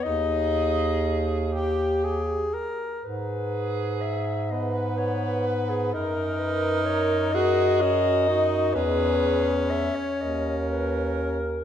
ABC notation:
X:1
M:6/8
L:1/16
Q:3/8=41
K:G#m
V:1 name="Clarinet"
d6 z6 | B4 e2 d B c2 B G | A2 B2 c2 d6 | B4 e c d2 B2 A2 |]
V:2 name="Alto saxophone"
G6 =G4 z2 | G6 B6 | A6 G2 F2 F2 | G4 z2 A6 |]
V:3 name="Tenor saxophone"
D6 =G2 ^G2 A2 | z6 B,6 | D6 F2 C2 D2 | C8- C2 z2 |]
V:4 name="Bass clarinet" clef=bass
D,,8- D,,2 z2 | G,,12 | F,,12 | E,,4 z2 D,,6 |]